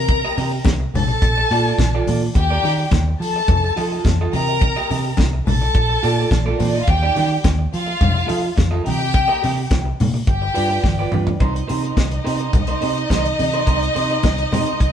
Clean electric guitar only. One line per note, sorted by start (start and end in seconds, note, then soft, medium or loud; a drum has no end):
0.10 muted clean electric guitar stroke soft
0.25 0.37 G4 medium
0.25 0.37 A#4 medium
0.25 0.38 D#5 medium
0.38 0.54 G4 medium
0.38 0.52 A#4 medium
0.38 0.51 D#5 medium
0.52 muted clean electric guitar stroke soft
0.66 muted clean electric guitar stroke soft
0.80 muted clean electric guitar stroke soft
1.08 muted clean electric guitar stroke soft
1.22 muted clean electric guitar stroke soft
1.38 muted clean electric guitar stroke medium
1.51 1.66 F4 loud
1.51 1.66 A4 medium
1.51 1.65 D5 loud
1.66 1.79 F4 medium
1.66 1.79 A4 medium
1.66 1.80 D5 medium
1.80 muted clean electric guitar stroke soft
1.95 2.06 F4 medium
1.95 2.07 A4 medium
1.95 2.08 D5 medium
2.08 2.24 F4 soft
2.08 2.23 A4 medium
2.08 2.22 D5 medium
2.23 muted clean electric guitar stroke soft
2.36 muted clean electric guitar stroke soft
2.51 2.63 G4 medium
2.51 2.64 A#4 medium
2.51 2.64 D5 medium
2.64 2.80 G4 medium
2.64 2.79 A#4 medium
2.64 2.79 D5 medium
2.80 muted clean electric guitar stroke medium
2.92 muted clean electric guitar stroke soft
3.08 muted clean electric guitar stroke soft
3.36 muted clean electric guitar stroke medium
3.49 muted clean electric guitar stroke soft
3.64 muted clean electric guitar stroke soft
3.76 3.92 F4 medium
3.76 3.91 A4 medium
3.76 3.91 D#5 medium
3.92 4.05 F4 medium
3.92 4.05 A4 medium
3.92 4.05 D#5 medium
4.06 muted clean electric guitar stroke soft
4.21 4.34 F4 medium
4.21 4.35 A4 medium
4.21 4.34 D#5 medium
4.34 4.50 G4 medium
4.34 4.48 A#4 medium
4.34 4.48 D#5 medium
4.49 muted clean electric guitar stroke soft
4.62 muted clean electric guitar stroke soft
4.76 4.89 G4 medium
4.76 4.90 A#4 medium
4.76 4.90 D#5 loud
4.91 5.06 G4 medium
4.91 5.05 A#4 medium
4.91 5.04 D#5 medium
5.05 muted clean electric guitar stroke medium
5.19 muted clean electric guitar stroke soft
5.33 muted clean electric guitar stroke soft
5.62 muted clean electric guitar stroke soft
5.74 muted clean electric guitar stroke soft
5.89 muted clean electric guitar stroke soft
6.03 6.18 F4 loud
6.03 6.18 A4 medium
6.03 6.17 D5 loud
6.18 6.30 F4 medium
6.18 6.30 A4 medium
6.18 6.31 D5 medium
6.31 muted clean electric guitar stroke soft
6.46 6.58 F4 medium
6.46 6.59 A4 medium
6.46 6.59 D5 medium
6.59 6.75 F4 medium
6.59 6.74 A4 medium
6.59 6.73 D5 medium
6.75 muted clean electric guitar stroke soft
6.88 muted clean electric guitar stroke medium
7.03 7.14 D#4 medium
7.03 7.15 G4 medium
7.03 7.16 D5 medium
7.16 7.32 D#4 medium
7.16 7.31 G4 medium
7.16 7.30 D5 medium
7.31 muted clean electric guitar stroke soft
7.44 muted clean electric guitar stroke soft
7.59 muted clean electric guitar stroke soft
7.86 muted clean electric guitar stroke soft
8.14 muted clean electric guitar stroke medium
8.27 8.48 F4 medium
8.27 8.42 A4 medium
8.27 8.41 D#5 medium
8.42 muted clean electric guitar stroke medium
8.56 muted clean electric guitar stroke soft
8.71 8.83 F4 medium
8.71 8.84 A4 medium
8.71 8.83 D#5 medium
8.84 9.01 G4 medium
8.84 8.99 A#4 medium
8.84 8.98 D#5 medium
9.00 muted clean electric guitar stroke medium
9.14 muted clean electric guitar stroke soft
9.28 9.41 G4 medium
9.28 9.41 A#4 medium
9.28 9.42 D#5 medium
9.42 9.59 G4 medium
9.42 9.57 A#4 medium
9.42 9.56 D#5 medium
9.57 muted clean electric guitar stroke soft
9.70 muted clean electric guitar stroke soft
9.85 muted clean electric guitar stroke soft
10.14 muted clean electric guitar stroke soft
10.27 muted clean electric guitar stroke soft
10.42 muted clean electric guitar stroke medium
10.54 10.69 F4 medium
10.54 10.69 B4 medium
10.54 10.68 D5 medium
10.70 10.83 F4 soft
10.70 10.83 B4 medium
10.70 10.84 D5 medium
10.84 muted clean electric guitar stroke soft
10.99 11.10 F4 medium
10.99 11.11 B4 medium
10.99 11.11 D5 medium
11.12 11.28 F4 medium
11.12 11.26 B4 medium
11.12 11.26 D5 medium
11.27 muted clean electric guitar stroke soft
11.40 11.61 D#4 medium
11.40 11.54 A#4 medium
11.40 11.53 C5 loud
11.54 muted clean electric guitar stroke soft
11.68 11.83 D#4 medium
11.68 11.83 A#4 medium
11.68 11.82 C5 medium
11.83 11.95 D#4 soft
11.83 11.96 A#4 medium
11.83 11.96 C5 medium
11.97 muted clean electric guitar stroke soft
12.11 muted clean electric guitar stroke soft
12.24 12.40 D#4 medium
12.24 12.39 A#4 medium
12.24 12.38 C5 medium
12.39 12.52 D#4 soft
12.39 12.53 A#4 medium
12.39 12.53 C5 medium
12.54 muted clean electric guitar stroke soft
12.68 12.80 D#4 soft
12.68 12.81 A#4 medium
12.68 12.81 C5 medium
12.81 13.02 D#4 medium
12.81 12.96 A#4 medium
12.81 12.96 C5 loud
12.97 muted clean electric guitar stroke soft
13.10 13.30 D#4 medium
13.10 13.24 A#4 medium
13.10 13.24 C5 medium
13.25 muted clean electric guitar stroke soft
13.38 muted clean electric guitar stroke soft
13.53 13.65 D#4 soft
13.53 13.66 A#4 medium
13.53 13.67 C5 medium
13.66 13.87 D#4 medium
13.66 13.82 A#4 medium
13.66 13.81 C5 medium
13.82 muted clean electric guitar stroke soft
13.95 14.10 D#4 medium
13.95 14.09 A#4 medium
13.95 14.09 C5 medium
14.10 14.22 D#4 medium
14.10 14.23 A#4 medium
14.10 14.23 C5 medium
14.23 muted clean electric guitar stroke soft
14.39 muted clean electric guitar stroke soft
14.52 14.67 D#4 medium
14.52 14.66 A#4 medium
14.52 14.66 C5 loud
14.67 14.78 D#4 medium
14.67 14.79 A#4 medium
14.67 14.79 C5 medium
14.80 muted clean electric guitar stroke soft